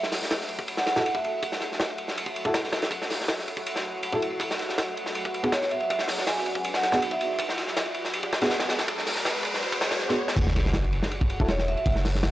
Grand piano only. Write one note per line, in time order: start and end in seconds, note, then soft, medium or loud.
0.96 1.02 E4 medium
0.96 1.02 F#4 medium
0.96 1.02 A4 medium
2.45 2.51 E4 medium
2.45 2.51 F#4 medium
2.45 2.51 A4 medium
4.13 4.18 E4 medium
4.13 4.19 F#4 medium
4.13 4.18 A4 medium
5.43 5.49 B3 medium
5.43 5.49 F#4 medium
5.43 5.49 G#4 medium
6.93 6.98 B3 medium
6.93 6.98 F#4 medium
6.93 6.98 G#4 medium
8.42 8.47 B3 medium
8.42 8.47 F#4 medium
8.42 8.47 G#4 loud
10.09 10.15 B3 medium
10.09 10.15 F#4 medium
10.09 10.15 G#4 medium
11.40 11.45 E4 medium
11.40 11.45 F#4 medium
11.40 11.45 A4 medium